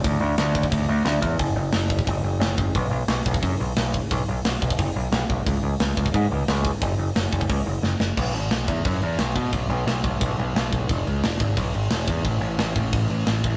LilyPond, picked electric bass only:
\new Staff \with { instrumentName = "Picked electric bass" } { \clef bass \time 4/4 \key fis \mixolydian \tempo 4 = 177 d,8 d,8 d,4 d,8 d,8 d,8 e,8 | fis,,8 fis,,8 fis,,4 fis,,8 fis,,8 fis,,8 fis,,8 | \key fis \major b,,8 b,,8 b,,8 b,,8 fis,8 b,,8 b,,4 | b,,8 b,,8 b,,8 b,,8 fis,,8 b,,8 b,,8 b,,8 |
cis,8 cis,8 cis,8 cis,8 gis,8 cis,8 cis,4 | fis,,8 fis,,8 fis,,8 fis,,8 cis,8 fis,,8 fis,,8 fis,,8 | \key e \lydian b,,8 gis,,8 b,,8 e,8 fis,8 e,8 b,,8 b,8 | b,,8 b,,8 b,,8 b,,8 b,,8 b,,8 b,,8 b,,8 |
e,,8 cis,8 e,,8 gis,,8 b,,8 gis,,8 e,,8 e,8 | a,,8 a,,8 a,,8 a,,8 a,,8 a,,8 a,,8 a,,8 | }